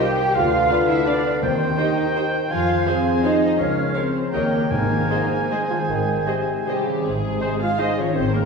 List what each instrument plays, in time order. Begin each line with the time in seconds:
Already playing: harp C3 C4 G4 D#5, bassoon D#3, clarinet C5, violin section G5, oboe G5
0.00 harp G3, cello section G4, flute section G5
0.17 harp C4
0.33 double bass section D2, harp D3, bassoon D3, cello section F4, clarinet B4, flute section F5, violin section F5, oboe F5
0.52 harp D4
0.70 harp F4, viola section B4, violin section D5 F5
0.88 cello section E4, harp D5, violin section E5, flute section E5
1.06 harp B3, cello section D4, viola section B4, violin section D5 F5, flute section D5
1.25 harp D4
1.41 double bass section D#2, bassoon D#3, harp D#3, timpani D#3, cello section C4, violin section C5, clarinet C5, flute section C5, oboe G5
1.60 harp D#4
1.77 cello section D#4, viola section G4 C5, harp G4, violin section C5 D#5 G5, flute section D#5
1.97 harp C5
2.15 harp C4, viola section G4 C5, violin section C5 G5
2.34 harp D#4
2.50 double bass section F2, bassoon F3, harp F3, cello section F4, violin section F5, flute section F5, oboe G#5
2.70 harp C4
2.86 cello section C4, viola section G#4 C5, harp G#4, violin section C5 F5, flute section C5
3.06 harp C5
3.24 cello section D#4, harp F4, viola section G#4 C5, violin section C5 D#5 F5, flute section D#5
3.42 harp C4
3.58 double bass section C#2, harp C#3, cello section C#4, clarinet A#4, violin section C#5, flute section C#5, oboe F5
3.76 harp C#4
3.93 cello section C4, harp F4, viola section A#4, violin section C5 C#5 F5, flute section C5
4.14 harp A#4
4.31 double bass section D#2, bassoon D#3, harp D#3, cello section A#3, viola section G4 A#4, violin section A#4 D#5, clarinet C#5, oboe G5
4.35 flute section A#4, violin section C#5
4.52 harp D#4 G4
4.70 double bass section G#1, timpani G#2, harp G#2, bassoon D#3, cello section A#3, violin section A#4, flute section A#4, clarinet C5, oboe G#5
4.91 harp D#3
5.10 bassoon G#2, harp D#4, viola section G#4 C5, violin section C5 D#5
5.31 harp G#4
5.50 cello section G#3, harp C4, violin section G#4 C5 D#5, viola section G#4 C5, flute section G#4
5.70 harp D#3, bassoon F3
5.89 double bass section G#1, harp G#2, bassoon D#3
6.07 harp C4
6.26 bassoon C3, harp D#4, viola section G#4 C5, violin section C5 D#5
6.47 harp G#4
6.66 french horn section C3, cello section G3, harp C4, clarinet G4, flute section G4, violin section G4 C5 D#5, viola section G#4 C5
6.86 bassoon C#3, harp D#3
7.04 double bass section G#1, harp G#2, french horn section C3, cello section G#3, flute section G#4, violin section G#4, clarinet G#4
7.23 harp D#3
7.40 bassoon G#3, harp D#4, viola section G#4 C5, oboe C5, violin section D#5
7.59 french horn section G#3, cello section F4, harp G#4, flute section F5, violin section F5, clarinet F5
7.77 bassoon G#3, french horn section G#3, harp C4, cello section D#4, viola section G#4 C5, oboe C5, violin section D#5, clarinet D#5, flute section D#5
7.97 harp D#3, french horn section F3, cello section C#4, violin section C#5, clarinet C#5, flute section C#5
8.14 double bass section G#1, harp G#2, french horn section D#3, cello section C4, clarinet C5, flute section C5, violin section C5
8.32 french horn section C#3, cello section A#3, harp C4, violin section A#4, flute section A#4, clarinet A#4